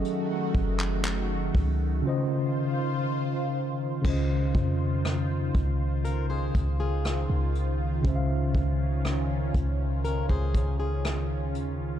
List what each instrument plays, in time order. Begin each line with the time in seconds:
Already playing: analog synth pad D#3 A3 F#4, tine electric piano F#3 C#4 G#4 A4 D#5
0.05 closed hi-hat
0.54 808-style bass F#1, kick, closed hi-hat
0.80 clap, closed hi-hat
1.04 clap, closed hi-hat
1.55 808-style bass C#2, kick, open hi-hat
2.02 tine electric piano C#3 C#4 F4, analog synth pad F4 C5
2.07 tine electric piano C5 D#5
4.02 808-style bass C#2, tine electric piano C#3 C#4 F4, analog synth pad D#3 F4 C5, kick, crash
4.07 tine electric piano C5 D#5
4.55 808-style bass F2, kick, closed hi-hat
5.05 cross-stick, closed hi-hat
5.55 808-style bass C#2, kick, closed hi-hat
6.05 steel-string acoustic guitar A#4, closed hi-hat
6.30 steel-string acoustic guitar G#4 C5
6.55 808-style bass C#2, kick, closed hi-hat
6.80 steel-string acoustic guitar F4 G#4
7.05 cross-stick, closed hi-hat
7.30 808-style bass C#2
7.55 closed hi-hat
8.02 808-style bass C#2, tine electric piano C#3 C#4 F4, analog synth pad C#4, kick, closed hi-hat
8.07 tine electric piano C5 E5
8.16 tine electric piano F5
8.55 808-style bass C#2, kick, closed hi-hat
9.04 cross-stick, closed hi-hat
9.55 808-style bass C#2, kick, closed hi-hat
10.05 steel-string acoustic guitar A#4, closed hi-hat
10.29 808-style bass C#2, steel-string acoustic guitar G#4 C5, kick
10.54 kick, closed hi-hat
10.80 steel-string acoustic guitar F4 G#4
11.04 cross-stick, closed hi-hat
11.55 808-style bass D#2, closed hi-hat
11.80 808-style bass C#2